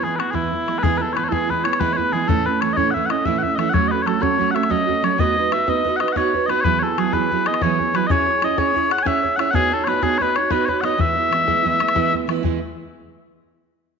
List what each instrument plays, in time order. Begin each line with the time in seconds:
0.03 steel-string acoustic guitar E3 G#3 B3 E4, bagpipes G#4
0.16 steel-string acoustic guitar E4, bagpipes F#4 B4
0.20 steel-string acoustic guitar G#3 B3, bodhran
0.31 steel-string acoustic guitar E3 G#3 B3, bagpipes E4 G#4, bodhran
0.35 steel-string acoustic guitar E4
0.44 bodhran
0.51 steel-string acoustic guitar G#3 E4, bodhran
0.66 steel-string acoustic guitar E3 G#3 B3 E4, bodhran
0.79 bagpipes B4
0.83 steel-string acoustic guitar E3 G#3 B3 E4, bagpipes G#4, bodhran
0.97 steel-string acoustic guitar E4, bagpipes B4
1.01 steel-string acoustic guitar B3, bagpipes A4
1.13 steel-string acoustic guitar E3, bagpipes B4 C#5, bodhran
1.17 steel-string acoustic guitar G#3 B3 E4
1.24 bagpipes C#5
1.29 steel-string acoustic guitar B3 E4, bagpipes G#4 A4, bodhran
1.33 steel-string acoustic guitar E3 G#3
1.48 steel-string acoustic guitar E3 G#3 B3 E4, bagpipes B4, bodhran
1.64 steel-string acoustic guitar G#3 B3 E4, bagpipes C#5, bodhran
1.73 bodhran
1.79 steel-string acoustic guitar E3 G#3 B3 E4, bagpipes B4, bodhran
1.93 bagpipes B4 C#5
1.98 steel-string acoustic guitar G#3 B3 E4, bodhran
2.12 steel-string acoustic guitar E3 G#3 B3 E4, bagpipes G#4
2.27 steel-string acoustic guitar A2 E3 A3 C#4 E4, bagpipes A4, bodhran
2.46 steel-string acoustic guitar A3 C#4 E4, bagpipes B4
2.61 steel-string acoustic guitar E3 A3 C#4 E4, bagpipes C#5, bodhran
2.73 bagpipes C#5 D#5
2.77 steel-string acoustic guitar A2 E3 A3 C#4 E4, bodhran
2.91 steel-string acoustic guitar E3, bagpipes E5 F#5
2.95 steel-string acoustic guitar A3 C#4 E4, bodhran
3.06 steel-string acoustic guitar E4, bagpipes F#5, bodhran
3.10 steel-string acoustic guitar A3 C#4, bagpipes D#5
3.25 steel-string acoustic guitar A2 E3 A3 C#4 E4, bagpipes E5, bodhran
3.39 steel-string acoustic guitar E4, bagpipes F#5
3.43 steel-string acoustic guitar A3 C#4, bagpipes E5, bodhran
3.55 steel-string acoustic guitar E3 A3, bagpipes D#5 E5, bodhran
3.60 steel-string acoustic guitar C#4 E4
3.70 steel-string acoustic guitar F#3 C#4, bagpipes F#5
3.74 steel-string acoustic guitar A3 F#4, bagpipes C#5, bodhran
3.88 steel-string acoustic guitar F#4, bagpipes B4 D#5
3.92 steel-string acoustic guitar A3 C#4
4.02 steel-string acoustic guitar F#3, bagpipes C#5
4.06 steel-string acoustic guitar A3 C#4 F#4, bagpipes A4, bodhran
4.20 steel-string acoustic guitar F#3 A3 C#4 F#4, bagpipes C#5, bodhran
4.38 steel-string acoustic guitar F#3 A3 C#4 F#4, bodhran
4.51 steel-string acoustic guitar A3 F#4, bagpipes E5 F#5
4.56 steel-string acoustic guitar C#4, bodhran
4.63 bodhran
4.69 steel-string acoustic guitar F#3 A3 C#4 F#4, bagpipes D#5, bodhran
4.87 steel-string acoustic guitar A3 C#4 F#4, bodhran
5.02 steel-string acoustic guitar F#3 A3 C#4 F#4, bagpipes C#5, bodhran
5.18 steel-string acoustic guitar B3 D#4 F#4 B4, bagpipes D#5, bodhran
5.36 steel-string acoustic guitar D#4 B4
5.51 steel-string acoustic guitar B3 D#4 F#4 B4, bagpipes E5, bodhran
5.67 steel-string acoustic guitar B3 D#4 F#4 B4, bagpipes D#5, bodhran
5.85 steel-string acoustic guitar B3 D#4 F#4 B4, bodhran
5.96 bagpipes F#5, bodhran
6.00 steel-string acoustic guitar D#4 F#4 B4, bagpipes D#5
6.08 bodhran
6.13 steel-string acoustic guitar B3 D#4, bagpipes F#5, bodhran
6.17 steel-string acoustic guitar F#4 B4, bagpipes C#5
6.33 steel-string acoustic guitar D#4 F#4 B4, bodhran
6.46 steel-string acoustic guitar B3 D#4, bagpipes B4 D#5, bodhran
6.51 steel-string acoustic guitar F#4 B4
6.61 steel-string acoustic guitar E3, bagpipes B4 C#5, bodhran
6.65 steel-string acoustic guitar F#3 B3 E4 G#4
6.79 steel-string acoustic guitar G#4, bagpipes A4 C#5
6.83 steel-string acoustic guitar B3 E4
6.98 steel-string acoustic guitar F#3 B3 E4 G#4, bagpipes G#4, bodhran
7.13 steel-string acoustic guitar E3 F#3 B3 E4 G#4, bagpipes B4, bodhran
7.31 steel-string acoustic guitar F#3 B3 E4 G#4, bodhran
7.46 steel-string acoustic guitar B3 E4 G#4, bagpipes D#5, bodhran
7.54 bodhran
7.62 steel-string acoustic guitar E3 F#3 B3 E4 G#4, bagpipes C#5, bodhran
7.79 steel-string acoustic guitar B3 E4 G#4, bodhran
7.93 steel-string acoustic guitar F#3 B3 E4 G#4, bagpipes B4, bodhran
8.07 steel-string acoustic guitar C#4 E4 G#4, bagpipes D#5, bodhran
8.11 bagpipes C#5, steel-string acoustic guitar C#5
8.27 steel-string acoustic guitar E4 G#4 C#5
8.42 steel-string acoustic guitar C#4 E4 G#4 C#5, bagpipes D#5, bodhran
8.57 steel-string acoustic guitar C#4 E4 G#4 C#5, bagpipes C#5, bodhran
8.74 steel-string acoustic guitar C#4 E4 G#4 C#5, bodhran
8.89 steel-string acoustic guitar E4 G#4 C#5, bagpipes F#5, bodhran
8.98 bodhran
9.03 steel-string acoustic guitar C#4 E4 G#4, bagpipes G#5, bodhran
9.07 steel-string acoustic guitar C#5, bagpipes E5
9.23 steel-string acoustic guitar E4 G#4 C#5, bodhran
9.36 steel-string acoustic guitar C#4 E4 G#4, bagpipes E5 F#5, bodhran
9.41 steel-string acoustic guitar C#5
9.51 steel-string acoustic guitar B3 D#4 F#4, bagpipes F#5, bodhran
9.55 bagpipes G#4, steel-string acoustic guitar C#5
9.71 steel-string acoustic guitar D#4 F#4 C#5, bagpipes A4
9.84 steel-string acoustic guitar B3 D#4, bagpipes B4 C#5, bodhran
9.89 steel-string acoustic guitar F#4 C#5
10.02 steel-string acoustic guitar B3 D#4 F#4 C#5, bagpipes G#4, bodhran
10.18 steel-string acoustic guitar B3 D#4 F#4, bagpipes C#5, bodhran
10.22 bagpipes B4, steel-string acoustic guitar C#5
10.35 steel-string acoustic guitar D#4 F#4 C#5, bagpipes C#5, bodhran
10.50 steel-string acoustic guitar B3 D#4 F#4 C#5, bagpipes B4, bodhran
10.65 bagpipes B4 C#5, steel-string acoustic guitar C#5, bodhran
10.70 steel-string acoustic guitar D#4 F#4
10.81 steel-string acoustic guitar B3 D#4, bagpipes D#5 F#5, bodhran
10.85 steel-string acoustic guitar F#4 C#5
10.97 steel-string acoustic guitar E3 G#3 B3 E4, bagpipes E5, bodhran
11.15 steel-string acoustic guitar G#3 B3 E4
11.31 steel-string acoustic guitar E3 G#3 B3 E4, bodhran
11.46 steel-string acoustic guitar E3 G#3 B3 E4, bodhran
11.64 steel-string acoustic guitar E3 G#3 B3 E4, bodhran
11.80 steel-string acoustic guitar G#3 B3 E4, bodhran
11.88 bodhran
11.95 steel-string acoustic guitar E3 G#3 B3 E4, bodhran
12.13 steel-string acoustic guitar G#3 B3 E4, bodhran
12.27 steel-string acoustic guitar E3 G#3 B3 E4, bodhran
12.43 steel-string acoustic guitar E3 G#3 B3 E4, bodhran